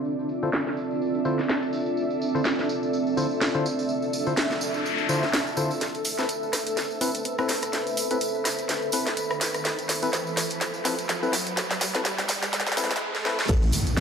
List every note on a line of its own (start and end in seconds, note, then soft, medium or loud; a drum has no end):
0.00 5.77 C4 medium
0.00 7.18 D4 medium
0.00 5.77 F4 medium
0.00 13.01 A4 medium
0.00 5.77 D5 medium
0.00 13.01 E5 medium
0.05 tambourine soft
0.19 tambourine soft
0.29 tambourine medium
0.43 0.50 D3 medium
0.43 0.50 E4 medium
0.43 0.50 F4 medium
0.43 0.50 A4 medium
0.43 0.50 C5 medium
0.43 tambourine soft
0.53 snare loud
0.53 tambourine soft
0.67 snare soft
0.67 tambourine soft
0.77 tambourine medium
0.91 tambourine soft
1.02 tambourine soft
1.15 tambourine soft
1.25 1.40 D3 medium
1.25 1.40 E4 medium
1.25 1.40 F4 medium
1.25 1.40 A4 medium
1.25 1.40 C5 medium
1.25 tambourine medium
1.39 snare soft
1.39 tambourine soft
1.49 snare loud
1.49 tambourine soft
1.63 tambourine soft
1.73 tambourine medium
1.86 tambourine soft
1.97 tambourine soft
2.10 tambourine soft
2.22 tambourine medium
2.35 2.42 D3 medium
2.35 2.42 E4 medium
2.35 2.42 F4 medium
2.35 2.42 A4 medium
2.35 2.42 C5 medium
2.35 tambourine soft
2.44 snare loud
2.44 tambourine medium
2.59 snare soft
2.59 tambourine soft
2.69 tambourine medium
2.83 tambourine soft
2.93 tambourine soft
3.07 tambourine soft
3.17 3.26 D3 medium
3.17 3.26 E4 medium
3.17 3.26 F4 medium
3.17 3.26 A4 medium
3.17 3.26 C5 loud
3.17 tambourine medium
3.31 tambourine soft
3.41 snare loud
3.41 tambourine soft
3.54 3.66 D3 medium
3.54 3.66 E4 medium
3.54 3.66 F4 medium
3.54 3.66 A4 medium
3.54 3.66 C5 loud
3.54 tambourine soft
3.66 tambourine medium
3.79 tambourine soft
3.89 tambourine soft
3.89 noise sweep medium
4.02 tambourine soft
4.13 tambourine medium
4.27 4.34 D3 medium
4.27 4.34 E4 medium
4.27 4.34 F4 medium
4.27 4.34 A4 medium
4.27 4.34 C5 medium
4.27 tambourine soft
4.37 snare loud
4.37 tambourine soft
4.51 snare soft
4.51 tambourine soft
4.61 tambourine medium
4.74 tambourine soft
4.86 tambourine soft
4.98 tambourine soft
5.09 5.24 D3 loud
5.09 5.24 E4 medium
5.09 5.24 F4 medium
5.09 5.24 A4 medium
5.09 5.24 C5 loud
5.09 tambourine medium
5.23 snare soft
5.23 tambourine soft
5.33 snare loud
5.33 tambourine soft
5.47 tambourine soft
5.57 5.72 D3 medium
5.57 5.72 E4 medium
5.57 5.72 F4 medium
5.57 5.72 A4 medium
5.57 5.72 C5 loud
5.57 tambourine medium
5.71 tambourine soft
5.81 12.97 A4 medium
5.81 12.97 B4 medium
5.81 12.97 C5 medium
5.81 snare soft
5.81 closed hi-hat medium
5.81 tambourine soft
5.81 riser medium
5.95 closed hi-hat soft
5.95 tambourine soft
6.05 open hi-hat loud
6.05 tambourine medium
6.19 6.26 C4 medium
6.19 6.26 E4 medium
6.19 6.26 A4 medium
6.19 6.26 B4 medium
6.19 snare soft
6.19 closed hi-hat medium
6.19 tambourine soft
6.29 closed hi-hat medium
6.29 tambourine medium
6.41 13.01 B5 medium
6.41 tambourine soft
6.53 cross-stick medium
6.53 snare soft
6.53 open hi-hat medium
6.53 tambourine medium
6.67 closed hi-hat medium
6.67 tambourine soft
6.77 snare medium
6.77 closed hi-hat medium
6.77 tambourine soft
6.90 tambourine soft
7.01 7.10 C4 medium
7.01 7.10 E4 medium
7.01 7.10 A4 medium
7.01 7.10 B4 loud
7.01 open hi-hat loud
7.01 tambourine medium
7.15 closed hi-hat medium
7.15 tambourine soft
7.25 closed hi-hat medium
7.25 tambourine soft
7.38 7.50 C4 medium
7.38 7.50 E4 medium
7.38 7.50 A4 medium
7.38 7.50 B4 loud
7.38 cross-stick medium
7.38 tambourine soft
7.49 snare medium
7.49 open hi-hat medium
7.49 tambourine medium
7.62 cross-stick medium
7.62 closed hi-hat medium
7.62 tambourine soft
7.73 snare medium
7.73 closed hi-hat medium
7.73 tambourine soft
7.87 closed hi-hat soft
7.87 tambourine soft
7.97 open hi-hat loud
7.97 tambourine loud
8.11 8.18 C4 medium
8.11 8.18 E4 medium
8.11 8.18 A4 medium
8.11 8.18 B4 medium
8.11 closed hi-hat medium
8.11 tambourine soft
8.21 closed hi-hat medium
8.21 tambourine medium
8.45 cross-stick medium
8.45 snare medium
8.45 open hi-hat loud
8.45 tambourine medium
8.59 closed hi-hat medium
8.59 tambourine soft
8.69 snare medium
8.69 closed hi-hat medium
8.69 tambourine medium
8.82 tambourine soft
8.92 9.08 C4 medium
8.92 9.08 E4 medium
8.92 9.08 A4 medium
8.92 9.08 B4 medium
8.92 open hi-hat loud
8.92 tambourine loud
9.07 snare medium
9.07 closed hi-hat medium
9.07 tambourine soft
9.17 closed hi-hat medium
9.17 tambourine medium
9.31 cross-stick medium
9.31 tambourine soft
9.41 snare medium
9.41 open hi-hat medium
9.41 tambourine medium
9.54 cross-stick medium
9.54 closed hi-hat medium
9.54 tambourine soft
9.65 snare medium
9.65 closed hi-hat medium
9.65 tambourine soft
9.79 closed hi-hat soft
9.79 tambourine soft
9.89 snare medium
9.89 open hi-hat loud
9.89 tambourine medium
10.02 10.10 C4 medium
10.02 10.10 E4 medium
10.02 10.10 A4 medium
10.02 10.10 B4 medium
10.02 closed hi-hat soft
10.02 tambourine soft
10.13 snare medium
10.13 closed hi-hat medium
10.13 tambourine medium
10.27 tambourine soft
10.37 snare medium
10.37 open hi-hat loud
10.37 tambourine medium
10.50 closed hi-hat soft
10.50 tambourine soft
10.61 snare medium
10.61 closed hi-hat medium
10.61 tambourine medium
10.74 tambourine soft
10.85 10.94 C4 medium
10.85 10.94 E4 medium
10.85 10.94 A4 medium
10.85 10.94 B4 loud
10.85 snare medium
10.85 open hi-hat loud
10.85 tambourine medium
10.99 closed hi-hat soft
10.99 tambourine soft
11.09 snare medium
11.09 closed hi-hat medium
11.09 tambourine medium
11.23 11.34 C4 medium
11.23 11.34 E4 medium
11.23 11.34 A4 medium
11.23 11.34 B4 loud
11.23 tambourine soft
11.33 snare medium
11.33 open hi-hat loud
11.33 tambourine medium
11.47 closed hi-hat medium
11.47 tambourine soft
11.57 snare loud
11.57 closed hi-hat medium
11.57 tambourine soft
11.71 snare medium
11.71 closed hi-hat soft
11.71 tambourine soft
11.81 snare medium
11.81 open hi-hat loud
11.81 tambourine medium
11.95 12.02 C4 medium
11.95 12.02 E4 medium
11.95 12.02 A4 medium
11.95 12.02 B4 medium
11.95 snare medium
11.95 closed hi-hat soft
11.95 tambourine soft
12.05 snare loud
12.05 closed hi-hat medium
12.05 tambourine medium
12.19 snare medium
12.19 tambourine soft
12.28 snare loud
12.28 open hi-hat loud
12.28 tambourine medium
12.42 snare medium
12.42 closed hi-hat medium
12.42 tambourine soft
12.53 snare medium
12.53 closed hi-hat medium
12.53 tambourine medium
12.60 snare medium
12.67 snare medium
12.67 tambourine soft
12.72 snare medium
12.77 12.92 C4 loud
12.77 12.92 E4 medium
12.77 12.92 A4 medium
12.77 12.92 B4 loud
12.77 snare loud
12.77 open hi-hat loud
12.77 tambourine loud
12.84 snare medium
12.91 snare medium
12.91 closed hi-hat medium
12.91 tambourine soft
12.96 snare medium
13.15 snare medium
13.25 13.40 C4 medium
13.25 13.40 E4 medium
13.25 13.40 A4 medium
13.25 13.40 B4 loud
13.25 snare medium
13.39 snare medium
13.48 13.71 A1 loud
13.48 14.00 A4 medium
13.48 14.00 B4 medium
13.48 14.00 C5 medium
13.48 kick loud
13.48 closed hi-hat medium
13.48 crash loud
13.48 tambourine soft
13.48 impact medium
13.62 closed hi-hat soft
13.62 tambourine soft
13.72 open hi-hat loud
13.72 tambourine loud
13.87 closed hi-hat medium
13.87 tambourine soft